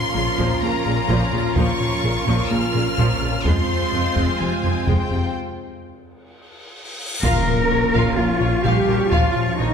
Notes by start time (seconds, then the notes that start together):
Already playing: F3 C#4 F4 A#4 C6
0.15 A#1 A#2 C#3
0.38 A#1 A#2 F3, taiko
0.62 A#1 A#2 C#3 A#3 A#5
0.86 A#1 A#2 C#3
1.09 A#1 A#2 F3, taiko
1.33 A#1 A#2 C#3
1.56 A#1 A#2 F3 C#6, taiko
1.80 A#2
2.04 A#1 A#2 C#3
2.27 A#1 A#2 F3, taiko
2.50 A#1 A#2 C#3 A#3 F6
2.75 A#1 A#2 C#3
2.98 A#1 A#2 F3, taiko
3.21 A#1 A#2 C#3
3.45 F1 F2 G#3 C4 F4 C5 C6, taiko
3.70 F2
3.92 F1 F2 F3
4.16 F1 F2 G#3, taiko
4.39 F1 F2 C3 F3 G#5
4.63 F1 F2 F3
4.87 F1 F2 G#3 G5, taiko
5.11 F1 F2 C3
5.34 cymbal swell
7.23 A#1 A#2 F3 A#3 C#4 F4 A#4 F5 C#6, taiko, impact
7.47 A#2
7.71 A#1 A#2 F4 C#5
7.94 A#1 A#2 F4 F5, taiko
8.17 A#1 F3 A#3 F4 A#4
8.40 A#1 A#2 F4 C#5
8.64 A#1 A#2 G3 F4 G4 F5, taiko
8.88 A#1 A#2 F4 A#4
9.12 A#1 A#2 F3 F4 F5, taiko
9.36 A#2
9.59 A#1 A#2 D#3 D#4 F4 C#5